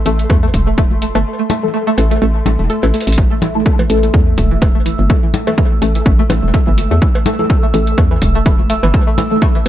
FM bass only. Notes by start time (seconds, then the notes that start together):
0.06 A1
0.30 E2
0.54 E1
1.15 G1
1.98 A1
2.22 A1
2.46 A1
2.59 E1
2.83 A1
3.07 A1
3.90 A1
4.14 E2
4.38 E1
4.99 G1
5.82 A1
6.06 A1
6.30 A1
6.43 E1
6.67 G1
6.91 E2
7.74 A1
7.98 E2
8.22 E1
8.83 G1